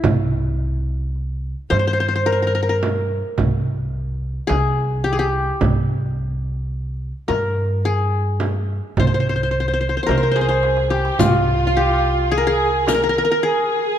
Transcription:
Already playing: E4
0.04 C2, frame drum, darbuka dum
1.16 darbuka ka
1.70 G2 C5, darbuka tek, frame drum
1.79 C5
1.87 C5
1.93 C5
2.00 C5
2.08 C5
2.16 C5
2.26 A#4
2.32 A#4
2.42 A#4
2.47 A#4
2.55 A#4
2.63 A#4
2.69 A#4
2.83 darbuka tek, frame drum
3.38 C2, frame drum, darbuka dum
4.47 C2 G#4, darbuka tek, frame drum
5.04 G4, darbuka ka
5.13 G#4
5.19 G4
5.61 C2, frame drum, darbuka dum
6.19 darbuka ka
7.28 G2 A#4, darbuka tek, frame drum
7.85 G#4
8.40 darbuka tek, frame drum
8.97 C2 C5, darbuka dum, frame drum
9.07 C5
9.14 C5
9.20 C5
9.29 C5
9.36 C5
9.43 C5
9.51 C5
9.60 C5
9.68 C5
9.74 C5
9.81 C5
9.89 C5
9.97 C5
10.03 A#4 C5
10.08 C2 A#4 C5, darbuka tek, frame drum
10.18 C5
10.22 C5, darbuka ka
10.31 C5
10.36 G#4, darbuka tek
10.41 C5
10.49 C5, darbuka ka
10.63 darbuka tek
10.77 darbuka ka
10.90 G4, darbuka tek
11.05 darbuka ka
11.19 C2 F4, riq, darbuka dum, frame drum
11.67 F4
11.77 G4
12.32 G#4
12.38 A#4
12.47 G#4
12.87 A#4, riq, darbuka tek, frame drum
12.94 A#4
13.04 A#4
13.09 A#4
13.18 A#4
13.25 A#4
13.31 A#4
13.43 G#4

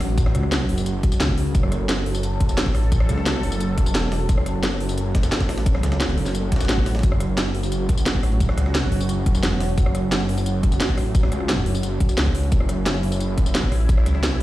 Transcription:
Already playing: F#3 C#4 F#4
0.00 A1, cross-stick, closed hi-hat, open hi-hat
0.09 closed hi-hat
0.18 kick, closed hi-hat, tambourine
0.26 cross-stick, snare
0.35 C#2, cross-stick, closed hi-hat, tambourine
0.43 cross-stick
0.52 snare, closed hi-hat, tambourine
0.60 snare
0.69 F#1, closed hi-hat, open hi-hat
0.78 snare, tambourine
0.86 F#1, closed hi-hat, tambourine
1.03 kick, closed hi-hat, tambourine
1.12 snare, tambourine
1.20 C#2, snare, closed hi-hat, tambourine
1.29 kick, snare
1.38 closed hi-hat, open hi-hat
1.46 closed hi-hat
1.55 F#1 A4, kick, closed hi-hat, tambourine
1.63 cross-stick
1.72 cross-stick, closed hi-hat, tambourine
1.89 snare, closed hi-hat, tambourine
1.98 snare
2.06 F#1, closed hi-hat, open hi-hat
2.15 snare, tambourine
2.23 closed hi-hat, tambourine
2.40 kick, closed hi-hat, tambourine
2.49 snare, tambourine
2.58 snare, closed hi-hat, tambourine
2.66 kick, snare
2.75 A1, cross-stick, closed hi-hat, open hi-hat
2.83 closed hi-hat
2.92 kick, closed hi-hat, tambourine
3.00 cross-stick, snare
3.09 C#2, cross-stick, snare, closed hi-hat, tambourine
3.18 cross-stick, snare
3.26 snare, closed hi-hat, tambourine
3.35 snare
3.43 F#1, closed hi-hat, open hi-hat
3.52 snare, tambourine
3.60 closed hi-hat, tambourine
3.78 kick, closed hi-hat, tambourine
3.86 snare, tambourine
3.95 E1, snare, closed hi-hat, tambourine
4.03 snare
4.12 snare, closed hi-hat, open hi-hat
4.20 closed hi-hat
4.29 F#1, kick, closed hi-hat, tambourine
4.38 cross-stick
4.46 cross-stick, closed hi-hat, tambourine
4.63 snare, closed hi-hat, tambourine
4.72 snare
4.80 F#1, closed hi-hat, open hi-hat
4.89 snare, tambourine
4.98 closed hi-hat, tambourine
5.15 kick, snare, closed hi-hat, tambourine
5.23 snare, closed hi-hat, tambourine
5.32 snare, closed hi-hat, tambourine
5.40 kick, snare, closed hi-hat
5.49 A1, cross-stick, snare, closed hi-hat, open hi-hat
5.58 snare, closed hi-hat
5.66 kick, closed hi-hat, tambourine
5.75 cross-stick, snare
5.83 C#2, cross-stick, snare, closed hi-hat, tambourine
5.92 cross-stick, snare, closed hi-hat
6.00 snare, closed hi-hat, tambourine
6.09 snare, tambourine
6.18 F#1, closed hi-hat, open hi-hat
6.26 snare, tambourine
6.35 closed hi-hat, tambourine, swell
6.52 kick, snare, closed hi-hat, tambourine
6.56 snare, closed hi-hat
6.60 snare, closed hi-hat, tambourine
6.65 snare, closed hi-hat
6.69 A1, snare, closed hi-hat, tambourine
6.78 kick
6.86 snare, closed hi-hat, open hi-hat, tambourine
6.95 snare, closed hi-hat
6.99 snare, closed hi-hat
7.03 F#1 F#4, kick, closed hi-hat, tambourine
7.12 cross-stick
7.20 cross-stick, closed hi-hat, tambourine
7.38 snare, closed hi-hat, tambourine
7.46 snare
7.55 F#1, closed hi-hat, open hi-hat
7.63 snare, tambourine
7.72 closed hi-hat, tambourine
7.89 kick, closed hi-hat, tambourine
7.98 snare, tambourine
8.06 snare, closed hi-hat, tambourine
8.15 kick, snare
8.23 A1, cross-stick, closed hi-hat, open hi-hat
8.32 closed hi-hat
8.40 kick, closed hi-hat, tambourine
8.49 cross-stick, snare
8.58 C#2, cross-stick, snare, closed hi-hat, tambourine
8.66 cross-stick, snare
8.75 snare, closed hi-hat, tambourine
8.83 snare
8.92 F#1, closed hi-hat, open hi-hat
9.00 snare, tambourine
9.09 closed hi-hat, tambourine
9.26 kick, closed hi-hat, tambourine
9.35 snare, tambourine
9.43 E1, snare, closed hi-hat, tambourine
9.52 snare
9.60 snare, closed hi-hat, open hi-hat
9.69 closed hi-hat
9.78 F#1, kick, closed hi-hat, tambourine
9.86 cross-stick
9.95 cross-stick, closed hi-hat, tambourine
10.12 snare, closed hi-hat, tambourine
10.20 snare
10.29 F#1, closed hi-hat, open hi-hat
10.38 snare, tambourine
10.46 closed hi-hat, tambourine
10.63 kick, closed hi-hat, tambourine
10.72 snare, tambourine
10.80 snare, closed hi-hat, tambourine
10.89 kick, snare
10.98 A1, cross-stick, closed hi-hat, open hi-hat
11.06 closed hi-hat
11.15 kick, closed hi-hat, tambourine
11.23 cross-stick, snare
11.32 C#2, cross-stick, closed hi-hat, tambourine
11.40 cross-stick
11.49 snare, closed hi-hat, tambourine
11.58 snare
11.66 F#1, closed hi-hat, open hi-hat
11.75 snare, tambourine
11.83 F#1, closed hi-hat, tambourine
12.00 kick, closed hi-hat, tambourine
12.09 snare, tambourine
12.18 C#2, snare, closed hi-hat, tambourine
12.26 kick, snare
12.35 closed hi-hat, open hi-hat
12.43 closed hi-hat
12.52 F#1 E4, kick, closed hi-hat, tambourine
12.60 cross-stick
12.69 cross-stick, closed hi-hat, tambourine
12.86 snare, closed hi-hat, tambourine
12.95 snare
13.03 F#1, closed hi-hat, open hi-hat
13.12 snare, tambourine
13.20 closed hi-hat, tambourine
13.38 kick, closed hi-hat, tambourine
13.46 snare, tambourine
13.55 snare, closed hi-hat, tambourine
13.63 kick, snare
13.72 A1, cross-stick, closed hi-hat, open hi-hat
13.80 closed hi-hat
13.89 kick, closed hi-hat, tambourine
13.98 cross-stick, snare
14.06 C#2, cross-stick, snare, closed hi-hat, tambourine
14.15 cross-stick, snare
14.23 snare, closed hi-hat, tambourine
14.32 snare

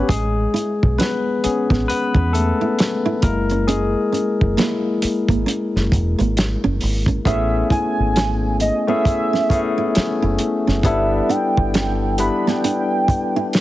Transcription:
Already playing: B3 C#4 B4 C#5
0.03 G4
0.09 A1 G#3 C#4 G#4, kick, closed hi-hat
0.54 E4, closed hi-hat
0.83 B1, kick
0.98 B3 C#4 B4, snare, closed hi-hat
1.44 B3 C#4 G#4, muted nylon-string guitar stroke, muted fingered electric bass stroke, closed hi-hat
1.70 A1 B3, kick, snare
1.88 B3 B4, muted fingered electric bass stroke, closed hi-hat
2.15 E2 C#4, kick
2.33 A3 A4, muted nylon-string guitar stroke, closed hi-hat
2.61 E4
2.79 snare, closed hi-hat
3.06 E4
3.22 F#1 G#3 A#3 E4 A#4, muted nylon-string guitar stroke, kick, closed hi-hat
3.50 C#4, closed hi-hat
3.67 G#3 C#4 G#4, closed hi-hat
4.12 C#4, closed hi-hat
4.41 F#1, kick
4.57 G#3 A#3 E4, snare, closed hi-hat
5.02 muted nylon-string guitar stroke, muted fingered electric bass stroke, closed hi-hat
5.28 G#1 A#3, kick, closed hi-hat
5.46 C#4, closed hi-hat
5.76 F#1, snare
5.92 E1, muted nylon-string guitar stroke, kick, closed hi-hat
6.19 G#1 A#3, closed hi-hat
6.37 snare, closed hi-hat
6.64 F#1 C#4
6.81 G#1, muted nylon-string guitar stroke, open hi-hat
7.06 C#4, kick, closed hi-hat
7.25 A1 A3 B3 C#4 E4 G#4 E5, kick, closed hi-hat
7.70 E4 G#5, kick, closed hi-hat
8.00 G#1
8.16 C#4, snare, closed hi-hat
8.60 D#5, muted nylon-string guitar stroke, closed hi-hat
8.87 A3 B3 C#4 E4 G#4 E5
9.05 kick, closed hi-hat
9.33 C#4, snare
9.49 A3 B3 C#4 E4 G#4, muted nylon-string guitar stroke, kick, closed hi-hat
9.78 E4
9.95 muted fingered electric bass stroke, snare, closed hi-hat
10.22 F#1 E4
10.39 muted nylon-string guitar stroke, closed hi-hat
10.67 F#1 C#4, snare
10.83 G1 G3 B3 C#4 D4 E4 A4 E5, kick, closed hi-hat
11.29 D4 G5, closed hi-hat
11.57 G1, kick
11.74 C#4, snare, closed hi-hat
12.18 G3 B3 D4 E4 B4 B5, muted nylon-string guitar stroke, closed hi-hat
12.47 B3 G5, snare
12.64 D4, closed hi-hat
13.08 muted nylon-string guitar stroke, kick, closed hi-hat
13.36 E4
13.53 snare, closed hi-hat

